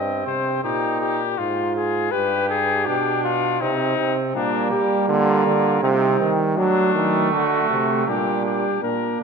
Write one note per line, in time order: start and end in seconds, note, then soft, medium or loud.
0.00 0.24 G2 medium
0.00 0.60 C4 medium
0.00 0.24 D#5 medium
0.26 0.63 C3 medium
0.26 0.63 C5 medium
0.64 1.37 A#2 medium
0.64 1.22 D#4 medium
0.64 0.99 G4 medium
1.00 1.40 G4 medium
1.38 2.12 G#2 medium
1.38 1.75 F4 medium
1.38 2.12 F4 medium
1.76 2.13 G#4 medium
2.11 2.89 G2 medium
2.11 2.88 G4 medium
2.11 2.49 B4 medium
2.49 2.87 G#4 medium
2.86 3.61 B2 medium
2.86 3.60 D4 medium
2.86 3.23 G4 medium
3.24 3.63 F4 medium
3.61 3.97 C3 medium
3.61 4.33 C4 medium
3.61 4.18 D#4 medium
3.98 4.34 C3 medium
4.35 4.73 A#2 medium
4.35 5.79 G3 medium
4.35 5.07 A#3 medium
4.35 4.70 D4 medium
4.71 5.08 G3 medium
4.71 5.07 G4 medium
5.08 5.45 D3 loud
5.08 5.82 A#3 medium
5.08 5.81 F4 medium
5.46 5.82 D3 medium
5.83 6.19 C3 loud
5.83 6.60 G3 medium
5.83 6.31 C4 medium
5.83 5.91 D#4 medium
5.90 5.99 F4 medium
5.97 6.36 D#4 medium
6.20 6.59 D#3 medium
6.57 6.94 F#3 loud
6.57 7.32 F#3 medium
6.57 8.11 A3 medium
6.57 7.28 D4 medium
6.95 7.34 D#3 medium
7.32 7.70 D3 medium
7.32 8.06 A3 medium
7.32 8.06 F#4 medium
7.70 8.07 C3 medium
8.07 8.66 A#2 medium
8.07 8.81 G3 medium
8.07 8.83 D4 medium
8.07 8.44 G4 medium
8.45 8.82 G4 medium
8.82 9.18 A#2 medium
8.82 9.23 A#3 medium
8.82 9.23 D4 medium
8.82 9.18 A#4 medium